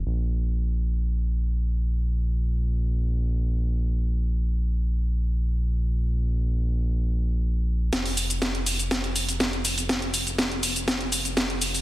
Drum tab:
HH |----------------|----------------|----------------|----------------|
SH |----------------|----------------|----------------|----------------|
SD |----------------|----------------|----------------|----------------|

HH |xooxxxoxxxoxxxox|xxoxxxoxxxoxxxoo|
SH |x-xxx-xxx-xxx-xx|x-xxx-xxx-xxx-xx|
SD |o---o---o---o---|o---o---o---o---|